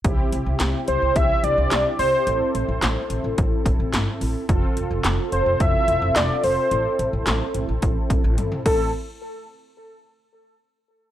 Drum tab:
CC |----------------|----------------|----------------|--------------x-|
HH |x-x-x-x-x-x-x-o-|x-x-x-x-x-x-x-o-|x-x-x-x-x-x-x-o-|x-x-x-x-x-x-x---|
CP |----x-------x---|----x-------x---|----x-------x---|----x-----------|
SD |----o-------o---|----o-------o---|----o-------o---|----o-----------|
T1 |----------------|----------------|----------------|------------o---|
T2 |----------------|----------------|----------------|-------------o--|
BD |o-------o-------|--------o-o-----|o-------o-------|--------o-o---o-|

CC |----------------|
HH |----------------|
CP |----------------|
SD |----------------|
T1 |----------------|
T2 |----------------|
BD |----------------|